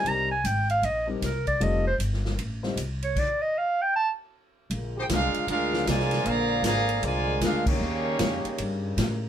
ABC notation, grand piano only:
X:1
M:4/4
L:1/8
Q:"Swing" 1/4=155
K:Fdor
V:1 name="Grand piano"
[G,CDEB] z4 [G,CDEB] z2 | [G,CEF=A] z4 [G,CEFc] z2 | z8 | [K:Eblyd] z8 |
z8 | z8 |]